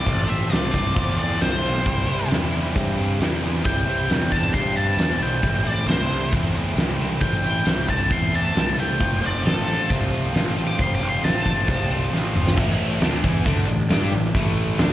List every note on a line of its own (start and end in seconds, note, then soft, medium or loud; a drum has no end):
0.00 0.22 A2 medium
0.00 0.24 F3 medium
0.00 0.28 D5 medium
0.05 0.27 A1 medium
0.05 0.24 A3 medium
0.05 0.25 C4 medium
0.05 0.25 F4 medium
0.05 kick loud
0.05 closed hi-hat medium
0.23 0.47 A2 medium
0.23 0.47 F3 medium
0.23 0.48 A3 medium
0.23 0.48 C4 medium
0.23 0.48 F4 medium
0.29 0.50 A1 medium
0.29 0.52 E5 medium
0.29 closed hi-hat medium
0.48 0.72 C2 medium
0.48 0.69 A2 medium
0.48 0.69 F3 medium
0.48 0.70 A3 medium
0.48 0.70 C4 medium
0.48 0.70 F4 loud
0.52 1.17 D5 medium
0.52 snare loud
0.52 closed hi-hat medium
0.70 0.94 C2 medium
0.70 0.93 A2 medium
0.70 0.93 F3 medium
0.70 0.93 A3 medium
0.70 0.95 C4 medium
0.70 0.94 F4 medium
0.70 kick medium
0.74 closed hi-hat medium
0.94 1.37 E2 medium
0.94 1.13 A2 medium
0.94 1.14 F3 medium
0.94 1.14 A3 medium
0.94 1.15 C4 medium
0.94 1.14 F4 medium
0.94 kick loud
0.94 closed hi-hat medium
1.14 1.36 A2 medium
1.14 1.36 F3 medium
1.14 1.37 A3 medium
1.14 1.38 C4 medium
1.14 1.37 F4 medium
1.18 1.40 D5 medium
1.18 closed hi-hat medium
1.37 1.61 C2 medium
1.37 1.60 A2 medium
1.37 1.60 F3 medium
1.37 1.61 A3 loud
1.37 1.62 C4 medium
1.37 1.62 F4 medium
1.37 closed hi-hat medium
1.42 2.28 C5 medium
1.42 snare medium
1.61 1.84 B1 medium
1.61 1.81 A2 medium
1.61 1.82 F3 medium
1.61 1.83 A3 medium
1.61 1.84 C4 medium
1.61 1.83 F4 medium
1.61 closed hi-hat medium
1.82 2.05 C3 medium
1.82 2.06 E3 medium
1.82 2.06 G3 medium
1.82 2.06 C4 medium
1.82 2.07 E4 medium
1.86 2.06 C2 medium
1.86 kick loud
1.86 closed hi-hat medium
2.05 2.27 C3 medium
2.05 2.28 E3 medium
2.05 2.28 G3 medium
2.05 2.28 C4 medium
2.05 2.29 E4 medium
2.05 closed hi-hat medium
2.09 2.29 C2 medium
2.27 2.50 C3 medium
2.27 2.50 E3 medium
2.27 2.51 G3 medium
2.27 2.51 C4 medium
2.27 2.51 E4 loud
2.27 closed hi-hat medium
2.32 2.52 E2 medium
2.32 snare loud
2.50 2.74 E2 medium
2.50 2.72 C3 medium
2.50 2.74 E3 medium
2.50 2.73 G3 medium
2.50 2.74 C4 medium
2.50 2.76 E4 medium
2.50 closed hi-hat medium
2.74 3.17 G2 medium
2.74 2.96 C3 medium
2.74 2.98 E3 medium
2.74 2.97 G3 medium
2.74 2.98 C4 medium
2.74 2.98 E4 medium
2.74 kick loud
2.74 closed hi-hat medium
2.97 3.20 C3 medium
2.97 3.21 E3 medium
2.97 3.20 G3 medium
2.97 3.21 C4 medium
2.97 3.22 E4 medium
2.97 closed hi-hat medium
3.20 3.40 E2 medium
3.20 3.42 C3 medium
3.20 3.43 E3 medium
3.20 3.43 G3 medium
3.20 3.44 C4 medium
3.20 3.45 E4 medium
3.20 snare medium
3.20 closed hi-hat medium
3.42 3.63 E2 medium
3.42 3.64 C3 medium
3.42 3.66 E3 medium
3.42 3.66 G3 medium
3.42 3.67 C4 medium
3.42 3.68 E4 medium
3.42 snare soft
3.42 closed hi-hat medium
3.65 3.86 C2 medium
3.65 3.86 C3 medium
3.65 3.87 E3 medium
3.65 3.87 G3 medium
3.65 3.88 C4 medium
3.65 3.89 E4 medium
3.65 4.30 G5 medium
3.65 kick medium
3.65 closed hi-hat medium
3.87 4.08 C2 medium
3.87 4.09 C3 medium
3.87 4.09 E3 medium
3.87 4.10 G3 medium
3.87 4.10 C4 medium
3.87 4.11 E4 medium
3.87 closed hi-hat medium
4.10 4.30 E2 medium
4.10 4.30 C3 medium
4.10 4.32 E3 medium
4.10 4.32 G3 medium
4.10 4.33 C4 loud
4.10 4.33 E4 medium
4.10 snare loud
4.10 closed hi-hat medium
4.32 4.52 E2 medium
4.32 4.53 C3 medium
4.32 4.54 E3 medium
4.32 4.54 G3 medium
4.32 4.55 C4 medium
4.32 4.55 E4 medium
4.32 4.53 A5 medium
4.32 kick medium
4.32 closed hi-hat medium
4.54 4.95 G2 medium
4.54 4.75 C3 medium
4.54 4.76 E3 medium
4.54 4.76 G3 medium
4.54 4.78 C4 medium
4.54 4.77 E4 medium
4.54 4.76 C6 medium
4.54 kick loud
4.54 closed hi-hat medium
4.76 4.98 C3 medium
4.76 5.00 E3 medium
4.76 5.00 G3 medium
4.76 5.00 C4 medium
4.76 5.01 E4 medium
4.76 5.20 A5 medium
4.76 closed hi-hat medium
4.97 5.18 E2 medium
4.97 5.19 C3 medium
4.97 5.21 E3 medium
4.97 5.21 G3 medium
4.97 5.22 C4 medium
4.97 snare medium
4.97 closed hi-hat medium
5.01 5.22 E4 medium
5.20 5.41 B1 medium
5.20 5.42 C3 medium
5.20 5.43 E3 medium
5.20 5.42 G3 medium
5.20 5.42 C4 medium
5.20 5.44 E4 medium
5.20 5.65 G5 medium
5.20 closed hi-hat medium
5.42 5.64 A1 medium
5.42 5.63 A2 medium
5.42 5.63 E3 medium
5.42 5.64 A3 medium
5.42 5.64 C4 medium
5.42 5.64 E4 medium
5.42 kick loud
5.42 closed hi-hat medium
5.63 5.86 A1 medium
5.63 5.85 A2 medium
5.63 5.86 E3 medium
5.63 5.86 A3 medium
5.63 5.87 C4 medium
5.63 5.88 E4 medium
5.63 5.88 D5 medium
5.63 closed hi-hat soft
5.86 6.08 C2 medium
5.86 6.10 A2 medium
5.86 6.11 E3 medium
5.86 6.11 A3 medium
5.86 6.11 C4 medium
5.86 6.11 E4 medium
5.86 6.32 C5 medium
5.86 snare medium
5.86 closed hi-hat medium
6.10 6.31 C2 medium
6.10 6.32 A2 medium
6.10 6.32 E3 medium
6.10 6.33 A3 medium
6.10 6.33 C4 medium
6.10 6.33 E4 medium
6.10 closed hi-hat medium
6.33 6.74 E2 medium
6.33 6.54 A2 medium
6.33 6.54 E3 medium
6.33 6.56 A3 medium
6.33 6.57 C4 medium
6.33 6.55 E4 medium
6.33 kick loud
6.33 closed hi-hat medium
6.55 6.76 A2 medium
6.55 6.77 E3 medium
6.55 6.78 A3 medium
6.55 6.79 C4 medium
6.55 6.78 E4 medium
6.55 closed hi-hat medium
6.76 6.97 C2 medium
6.76 6.99 A2 medium
6.76 6.98 E3 medium
6.76 7.00 A3 medium
6.76 7.00 C4 medium
6.76 7.00 E4 medium
6.76 snare loud
6.76 closed hi-hat medium
6.99 7.20 C2 medium
6.99 7.22 A2 medium
6.99 7.22 E3 medium
6.99 7.23 A3 medium
6.99 7.23 C4 medium
6.99 7.23 E4 medium
6.99 closed hi-hat medium
7.20 7.42 A1 medium
7.20 7.43 A2 medium
7.20 7.43 E3 medium
7.20 7.44 A3 medium
7.20 7.44 C4 medium
7.20 7.44 E4 medium
7.20 7.86 G5 medium
7.20 kick loud
7.20 closed hi-hat medium
7.43 7.64 A1 medium
7.43 7.65 A2 medium
7.43 7.64 E3 medium
7.43 7.65 A3 medium
7.43 7.66 C4 medium
7.43 7.65 E4 medium
7.43 closed hi-hat medium
7.65 7.87 C2 medium
7.65 7.86 A2 medium
7.65 7.87 E3 medium
7.65 7.88 A3 medium
7.65 7.89 C4 medium
7.65 7.88 E4 medium
7.65 snare loud
7.65 closed hi-hat medium
7.87 8.09 C2 medium
7.87 8.08 A2 medium
7.87 8.09 E3 medium
7.87 8.11 A3 medium
7.87 8.11 C4 medium
7.87 8.11 E4 medium
7.87 8.11 A5 medium
7.87 kick medium
7.87 closed hi-hat medium
8.09 8.52 E2 medium
8.09 8.32 A2 medium
8.09 8.33 E3 medium
8.09 8.34 A3 medium
8.09 8.34 C4 medium
8.09 8.34 E4 medium
8.09 8.33 C6 medium
8.09 kick medium
8.09 closed hi-hat medium
8.33 8.54 A2 medium
8.33 8.54 E3 medium
8.33 8.55 A3 medium
8.33 8.56 C4 medium
8.33 8.56 E4 medium
8.33 8.78 A5 medium
8.33 closed hi-hat medium
8.55 8.76 C2 medium
8.55 8.76 A2 medium
8.55 8.76 E3 medium
8.55 8.79 A3 medium
8.55 8.79 C4 medium
8.55 8.78 E4 medium
8.55 snare loud
8.55 closed hi-hat medium
8.77 8.98 C2 medium
8.77 8.99 A2 medium
8.77 8.99 E3 medium
8.77 9.00 A3 medium
8.77 9.00 C4 medium
8.77 9.00 E4 medium
8.77 9.22 G5 medium
8.77 closed hi-hat medium
9.00 9.20 F1 medium
9.00 9.21 F3 medium
9.00 9.21 A3 medium
9.00 9.22 C4 medium
9.00 9.22 F4 medium
9.00 kick loud
9.00 closed hi-hat medium
9.21 9.42 F1 medium
9.21 9.43 F3 medium
9.21 9.43 A3 medium
9.21 9.44 C4 medium
9.21 9.44 F4 medium
9.21 closed hi-hat medium
9.26 9.46 D5 medium
9.43 9.65 A1 medium
9.43 9.66 F3 medium
9.43 9.67 A3 loud
9.43 9.68 C4 loud
9.43 9.68 F4 medium
9.43 9.89 A4 medium
9.43 closed hi-hat medium
9.47 snare loud
9.66 9.87 A1 medium
9.66 9.88 F3 medium
9.66 9.88 A3 medium
9.66 9.89 C4 medium
9.66 9.88 F4 medium
9.66 closed hi-hat medium
9.89 10.31 C2 medium
9.89 10.09 F3 medium
9.89 10.11 A3 medium
9.89 10.11 C4 loud
9.89 10.11 F4 medium
9.89 kick loud
9.89 closed hi-hat medium
10.10 10.32 F3 medium
10.10 10.34 A3 medium
10.10 10.34 C4 medium
10.10 10.34 F4 medium
10.10 closed hi-hat medium
10.34 10.54 A1 medium
10.34 10.54 F3 medium
10.34 10.55 A3 medium
10.34 10.56 C4 medium
10.34 10.55 F4 medium
10.34 snare loud
10.34 closed hi-hat medium
10.55 10.76 A1 medium
10.55 10.77 F3 medium
10.55 10.77 A3 medium
10.55 10.78 C4 medium
10.55 10.78 F4 medium
10.55 closed hi-hat medium
10.67 10.80 D6 medium
10.78 10.99 F1 medium
10.78 10.99 F3 medium
10.78 11.00 A3 medium
10.78 11.00 C4 medium
10.78 11.01 F4 medium
10.78 10.95 C6 medium
10.78 kick loud
10.78 closed hi-hat medium
10.95 11.08 D6 medium
11.00 11.21 F1 medium
11.00 11.22 F3 medium
11.00 11.22 A3 medium
11.00 11.23 C4 medium
11.00 11.23 F4 medium
11.00 closed hi-hat medium
11.09 11.23 C6 medium
11.23 11.44 A1 medium
11.23 11.44 F3 medium
11.23 11.45 A3 medium
11.23 11.45 C4 medium
11.23 11.46 F4 medium
11.23 12.53 A5 medium
11.23 snare loud
11.23 closed hi-hat medium
11.45 11.66 A1 medium
11.45 11.68 F3 medium
11.45 11.69 A3 medium
11.45 11.69 C4 medium
11.45 11.70 F4 medium
11.45 kick medium
11.45 closed hi-hat medium
11.67 12.09 C2 medium
11.67 11.89 F3 medium
11.67 11.89 A3 medium
11.67 11.90 C4 medium
11.67 11.90 F4 medium
11.67 kick loud
11.67 closed hi-hat medium
11.90 12.12 F3 medium
11.90 12.12 A3 medium
11.90 12.13 C4 medium
11.90 12.13 F4 medium
11.90 closed hi-hat medium
12.12 12.33 A1 medium
12.12 12.34 F3 medium
12.12 12.35 A3 medium
12.12 12.35 C4 medium
12.12 12.36 F4 medium
12.12 snare soft
12.35 12.55 G1 medium
12.35 12.56 F3 medium
12.35 12.56 A3 medium
12.35 12.57 C4 medium
12.35 12.57 F4 medium
12.35 mid tom medium
12.48 snare medium
12.56 12.99 A1 medium
12.56 13.01 A2 medium
12.56 13.01 E3 loud
12.56 13.01 A3 loud
12.56 kick loud
12.56 crash loud
12.80 open hi-hat medium
13.01 13.22 D2 medium
13.01 13.24 D3 medium
13.01 13.24 A3 loud
13.01 13.24 D4 loud
13.01 snare loud
13.01 open hi-hat medium
13.24 13.45 E2 medium
13.24 13.46 E3 loud
13.24 13.46 B3 loud
13.24 13.46 E4 loud
13.24 kick medium
13.24 open hi-hat medium
13.45 13.67 D2 medium
13.45 13.66 D3 medium
13.45 13.67 A3 medium
13.45 13.68 D4 medium
13.45 kick loud
13.45 open hi-hat medium
13.67 13.89 A1 medium
13.67 13.85 A2 medium
13.67 13.86 E3 medium
13.67 open hi-hat medium
13.89 14.11 G2 medium
13.89 14.12 G3 medium
13.89 14.12 D4 medium
13.89 14.13 G4 loud
13.89 snare loud
13.89 open hi-hat medium
14.12 14.33 A1 medium
14.12 14.30 A2 medium
14.12 14.31 E3 medium
14.12 open hi-hat medium
14.25 snare soft
14.34 14.76 A1 medium
14.34 14.78 A2 loud
14.34 14.79 E3 loud
14.34 14.79 A3 loud
14.34 kick loud
14.34 open hi-hat medium
14.56 open hi-hat soft
14.78 14.93 D2 loud
14.78 14.93 D3 medium
14.78 14.93 A3 loud
14.78 14.93 D4 loud
14.78 snare loud
14.78 open hi-hat medium